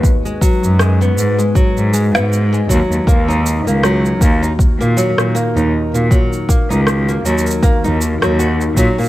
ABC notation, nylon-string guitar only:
X:1
M:4/4
L:1/16
Q:"Swing 16ths" 1/4=79
K:D#phr
V:1 name="Nylon-string guitar"
z G, F,2 G, B,2 G, F,2 G, B, z G, F,2 | A, D2 A, F,2 A, D z A, F,2 A, D2 A, | F,2 A, D z A, F,2 A, D z F, F z F, A, |]